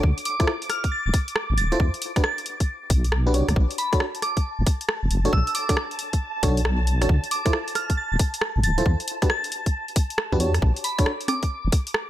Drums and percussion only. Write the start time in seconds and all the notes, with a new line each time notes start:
0.03 kick
0.18 closed hi-hat
0.25 open hi-hat
0.40 kick, cross-stick, closed hi-hat
0.47 cross-stick
0.62 closed hi-hat
0.70 cross-stick, open hi-hat
0.84 kick, closed hi-hat
1.14 kick, cross-stick, open hi-hat
1.28 closed hi-hat
1.36 cross-stick
1.58 open hi-hat
1.72 closed hi-hat
1.80 kick
1.94 closed hi-hat
2.02 open hi-hat
2.16 kick, cross-stick, closed hi-hat
2.24 cross-stick
2.38 closed hi-hat
2.46 open hi-hat
2.60 kick, closed hi-hat
2.90 kick, open hi-hat
3.04 closed hi-hat
3.12 cross-stick
3.34 open hi-hat
3.49 cross-stick, closed hi-hat
3.56 kick
3.71 closed hi-hat
3.78 open hi-hat
3.93 kick, cross-stick, closed hi-hat
4.00 cross-stick
4.15 closed hi-hat
4.22 cross-stick, open hi-hat
4.37 kick, closed hi-hat
4.67 kick, cross-stick, open hi-hat
4.81 closed hi-hat
4.89 cross-stick
5.11 open hi-hat
5.25 closed hi-hat
5.33 kick
5.47 closed hi-hat
5.55 open hi-hat
5.69 kick, cross-stick, closed hi-hat
5.77 cross-stick
5.91 closed hi-hat
5.99 open hi-hat
6.13 kick, closed hi-hat
6.43 kick, open hi-hat
6.57 closed hi-hat
6.65 cross-stick
6.87 open hi-hat
7.02 cross-stick, closed hi-hat
7.09 kick
7.24 closed hi-hat
7.31 open hi-hat
7.46 kick, cross-stick, closed hi-hat
7.53 cross-stick
7.68 closed hi-hat
7.75 cross-stick, open hi-hat
7.90 kick, closed hi-hat
8.19 kick, cross-stick, open hi-hat
8.34 closed hi-hat
8.41 cross-stick
8.64 open hi-hat
8.78 closed hi-hat
8.86 kick
9.00 closed hi-hat
9.08 open hi-hat
9.22 kick, cross-stick, closed hi-hat
9.30 cross-stick
9.44 closed hi-hat
9.52 open hi-hat
9.66 kick, closed hi-hat
9.88 closed hi-hat
9.96 kick, open hi-hat
10.10 closed hi-hat
10.18 cross-stick
10.33 kick
10.40 open hi-hat
10.54 cross-stick, closed hi-hat
10.62 kick
10.76 closed hi-hat
10.84 open hi-hat
10.99 kick, cross-stick, closed hi-hat
11.06 cross-stick
11.21 closed hi-hat
11.28 cross-stick, open hi-hat, high conga
11.43 kick, closed hi-hat
11.72 kick, cross-stick, open hi-hat
11.87 closed hi-hat
11.94 cross-stick